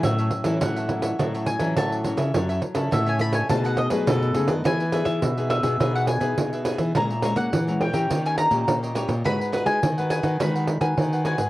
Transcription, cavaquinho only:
\new Staff \with { instrumentName = "Cavaquinho" } { \time 4/4 \key e \major \tempo 4 = 104 <fis' a' cis'' e''>16 <a' cis'' e''>16 r16 <a' cis'' e''>16 <fis' a' cis'' e''>16 <a' cis'' e''>8 <a' cis'' e''>16 <fis' a' cis'' e''>16 <a' cis'' e''>16 r16 <a' cis'' e''>16 <fis' a' cis'' e''>8 <fis' a' cis'' e''>16 <a' cis'' e''>16 | <fis' a' cis'' e''>16 <a' cis'' e''>16 r16 <a' cis'' e''>16 <fis' a' cis'' e''>16 <a' cis'' e''>8 <a' cis'' e''>16 <dis' a' b' dis''>16 <a' b' dis''>16 r16 <a' b' dis''>16 <dis' a' b' dis''>8 <dis' a' b' dis''>16 <a' b' dis''>16 | <dis' gis' b' e''>16 <gis' b' e''>16 <dis' gis' b' e''>16 r8 <gis' b' e''>16 <dis' gis' b' e''>16 <gis' b' e''>16 <dis' gis' b' e''>16 <gis' b' e''>16 r16 <gis' b' e''>8 <gis' b' e''>16 <dis' gis' b' e''>16 <gis' b' e''>16 | <gis' cis'' e'' ais''>16 <cis'' e'' ais''>16 <gis' cis'' e'' ais''>16 r8 <cis'' e'' ais''>16 <gis' cis'' e'' ais''>16 <cis'' e'' ais''>16 <dis' g' cis'' dis''>16 <g' cis'' dis''>16 r16 <g' cis'' dis''>8 <g' cis'' dis''>16 <dis' g' cis'' dis''>16 <g' cis'' dis''>16 |
<fis' gis' b' fis''>16 <gis' b' fis''>16 <fis' gis' b' fis''>16 r8 <gis' b' fis''>16 <fis' gis' b' fis''>16 <gis' b' fis''>16 <fis' gis' b' fis''>16 <gis' b' fis''>16 r16 <gis' b' fis''>8 <gis' b' fis''>16 <fis' gis' b' fis''>16 <gis' b' fis''>16 | }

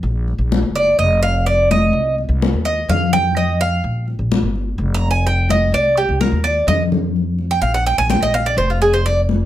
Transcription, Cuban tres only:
\new Staff \with { instrumentName = "Cuban tres" } { \time 4/4 \key c \minor \tempo 4 = 127 r4. d''8 ees''8 f''8 d''8 ees''8~ | ees''8 r4 ees''8 f''8 g''8 ees''8 f''8~ | f''8 r4. \tuplet 3/2 { r8 bes''8 aes''8 } g''8 ees''8 | d''8 g'8 bes'8 d''8 ees''8 r4 r16 g''16 |
f''16 fis''16 g''16 aes''16 g''16 ees''16 f''16 d''16 c''16 f'16 aes'16 c''16 d''8 r8 | }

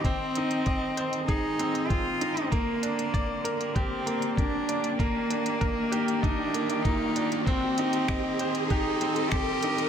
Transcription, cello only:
\new Staff \with { instrumentName = "Cello" } { \time 4/4 \key c \minor \tempo 4 = 97 c'2 ees'4 f'4 | bes2 c'4 d'4 | bes2 d'4 ees'4 | c'2 ees'4 g'4 | }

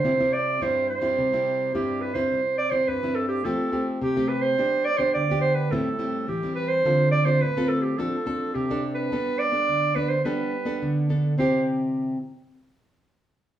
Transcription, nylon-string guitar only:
\new Staff \with { instrumentName = "Nylon-string guitar" } { \time 4/4 \key c \major \tempo 4 = 106 << { <g c' e'>16 <g c' e'>8. <g c' e'>8 r16 <g c' e'>8 <g c' e'>8. <g c' e'>8. <g c' e'>16~ | <g c' e'>16 r8 <g c' e'>8 <g c' e'>8. <a c' g'>8 <a c' g'>8 r16 <a c' g'>8. | <b d' g'>8 r16 <b d' g'>8 <b d' g'>8. <g c' e'>16 r16 <g c' e'>8 r16 <g c' e'>8. | <c' f' a'>8. <c' f' a'>8 <c' f' a'>8. <c' d' a'>16 r16 <c' d' a'>8. <c' d' a'>8. |
<b d' a'>8. <b d' a'>8. <b d' a'>16 r16 <b d' a'>8 r16 <b d' a'>8. <b d' a'>8 | <c c' e' g'>8 r2. r8 | } \\ { c4 g,4 c4 g,4 | c4 g,4 f4 c4 | g4 d4 a,4 e4 | d4 a,4 f4 c4 |
g4 d4 g4 d4 | r1 | } >> }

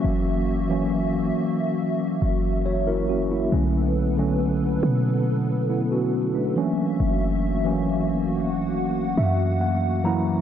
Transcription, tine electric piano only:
<<
  \new Staff \with { instrumentName = "Tine electric piano" } { \time 4/4 \key fis \phrygian \tempo 4 = 69 r2. <fis' cis''>16 <e' ais'>16 <cis' fis'>16 <ais e'>16~ | <ais e'>16 r2 r16 <b e'>16 <cis' fis'>8 <a d'>8 r16 | r2 r8 e''8 fis''8 ais''8 | }
  \new Staff \with { instrumentName = "Tine electric piano" } { \clef bass \time 4/4 \key fis \phrygian <e fis ais cis'>8. <e fis ais cis'>4.~ <e fis ais cis'>16 r4. | <d fis a cis'>8. <d fis a cis'>4.~ <d fis a cis'>16 r4 <e fis ais cis'>8~ | <e fis ais cis'>8. <e fis ais cis'>4.~ <e fis ais cis'>16 r4 <e fis ais e'>8 | }
>>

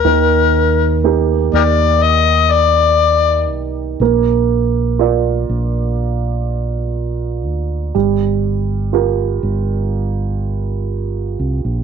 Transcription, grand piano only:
\new Staff \with { instrumentName = "Grand piano" } { \time 4/4 \key bes \major \tempo 4 = 61 ees4 <bes ees' g'>2. | bes4 <f' bes' d''>2. | g4 <f' g' bes'>2. | }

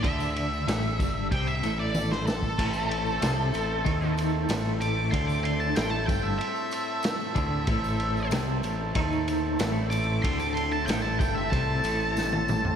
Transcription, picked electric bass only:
\new Staff \with { instrumentName = "Picked electric bass" } { \clef bass \time 4/4 \key a \minor \tempo 4 = 94 d,4 a,,8 g,,8 c,8 a,,4. | a,,4 c,8 a,,8 dis,4 a,,4 | d,4 a,,8 g,,8 r4. d,8 | a,,4 c,8 a,,8 dis,4 a,,4 |
d,4 a,,8 g,,8 c,8 a,,4. | }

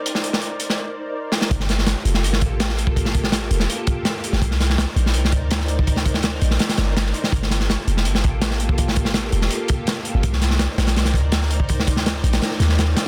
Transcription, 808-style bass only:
\new Staff \with { instrumentName = "808-style bass" } { \clef bass \time 4/4 \key g \minor \tempo 4 = 165 r1 | g,,4~ g,,16 r16 f,,8 g,,8 a,,4.~ | a,,4. f,,8 r4. r16 g,,16 | c,4~ c,16 r16 bes,,8 c,8 d,4.~ |
d,4. bes,,8 r8 g,,4 r8 | g,,4~ g,,16 r16 f,,8 g,,8 a,,4.~ | a,,4. f,,8 r4. r16 g,,16 | c,4~ c,16 r16 bes,,8 c,8 d,4.~ |
d,4. bes,,8 r8 ees,4 r8 | }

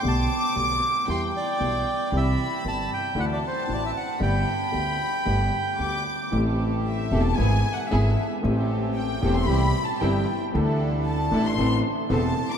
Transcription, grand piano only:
\new Staff \with { instrumentName = "Grand piano" } { \clef bass \time 4/4 \key g \major \tempo 4 = 115 <b,, b, d a b g'>8 r8 <b,, b, d a b g'>8 r8 <e, e g b g'>8 r8 <b,, b, e g b g'>8 r8 | <c, c e g c' g'>8 r8 <g,, g, e g c' g'>8 r8 <d, d e a d' fis'>8 r8 <a,, a, e a d' fis'>8 r8 | <g,, g, d a b g'>8 r8 <d, d a b g'>8 r8 <g,, g, d a b g'>8 r8 <d, d a b g'>8 r8 | <a,, a, e a c' g'>4. <e,, e, e a c' g'>8 <gis,, gis, e gis b gis'>8 r8 <gis,, gis, e gis b gis'>8 r8 |
<a,, a, e a c' g'>4. <e,, e, e a c' g'>8 <c, c e g c' g'>8 r8 <g,, g, e g c' g'>8 r8 | <d, d e a d' a'>4. <a,, a, e a d' a'>8 <a,, a, e b c' a'>8 r8 <e,, e, e b c' a'>8 r8 | }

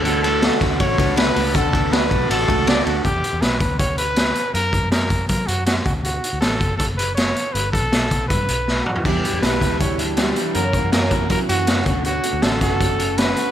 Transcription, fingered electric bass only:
\new Staff \with { instrumentName = "Fingered electric bass" } { \clef bass \time 4/4 \key d \major \tempo 4 = 160 d,4. d,8 a,,8 cis,4 cis,8 | d,4. b,,8 a,,8 cis,4 d,8 | e,8 r16 e,16 b,,8 d,2 r8 | fis,8. fis,4~ fis,16 fis8 fis,4 d,8~ |
d,8 r16 d,16 a,,8 fis,,2 r8 | g,,8. b,,4~ b,,16 g,8 b,,4 r8 | e,8 r16 e,16 b,,8 d,2 r8 | fis,8. fis,4~ fis,16 fis8 fis,4 d,8~ |
d,8 r16 d,16 a,,8 fis,,2 r8 | }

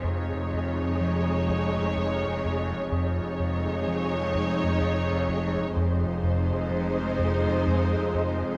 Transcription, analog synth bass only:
\new Staff \with { instrumentName = "Analog synth bass" } { \clef bass \time 3/4 \key des \lydian \tempo 4 = 63 f,8 f,8 f8 f,8 f,8 f,8 | f,8 f,8 f8 f,8 f,8 f,8 | f,8 f,8 f8 f,8 f,8 f,8 | }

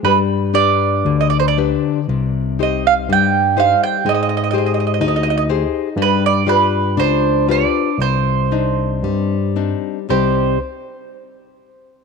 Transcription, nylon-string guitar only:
\new Staff \with { instrumentName = "Nylon-string guitar" } { \time 2/4 \key c \minor \tempo 4 = 60 g8 <d' g' b'>8 d8 <d' g' b'>8 | c8 <ees' g' c''>8 g8 <ees' g' c''>8 | aes8 <g' aes' c''>8 ees'8 <g' aes' c''>8 | g8 <f' g' d''>8 d'8 <f' g' b'>8 |
c8 <c' d' ees'>8 g8 <c' d' ees'>8 | <c g c' ees' g'>8 r4. | }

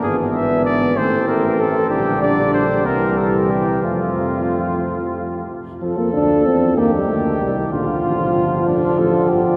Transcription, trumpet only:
\new Staff \with { instrumentName = "Trumpet" } { \time 6/8 \key f \major \tempo 4. = 63 gis'8 e''8 d''8 c''8 bes'8 a'8 | g'8 d''8 c''8 bes'8 a'8 g'8 | f'2~ f'8 r8 | a'4. g'4. |
f'2. | }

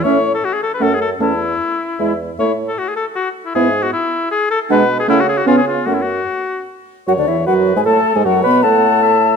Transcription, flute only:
\new Staff \with { instrumentName = "Flute" } { \time 3/4 \key a \major \tempo 4 = 154 e''8 r4. fis''8 r8 | a''8 r4. e''8 r8 | e''8 r2 r8 | e''8 r2 r8 |
\key fis \minor fis''8 r8 fis''8 r8 gis''8 r8 | fis''8 r2 r8 | fis''16 d''16 e''8 fis''8. gis''16 a''8. gis''16 | fis''8 b''8 a''2 | }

